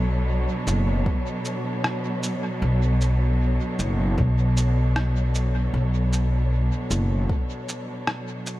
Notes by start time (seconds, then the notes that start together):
Already playing: B1 B2 F#3 D4 A4 C#5
0.67 F#1, shaker
1.06 kick
1.45 shaker
1.84 cross-stick
2.23 shaker
2.62 B1
3.01 shaker
3.79 F#1, shaker
4.18 B1, kick
4.57 shaker
4.96 cross-stick
5.35 shaker
5.74 B1
6.13 shaker
6.90 F#1, shaker
7.29 kick
7.69 shaker
8.07 cross-stick
8.46 shaker